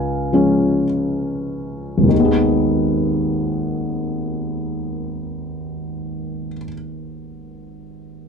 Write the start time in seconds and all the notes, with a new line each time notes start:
Already playing: C#2 F5 G#5
0.33 F3 G#3 C#4
1.98 G#1
2.03 D#2
2.08 D#3
2.14 G#3
2.20 B3
2.25 G#4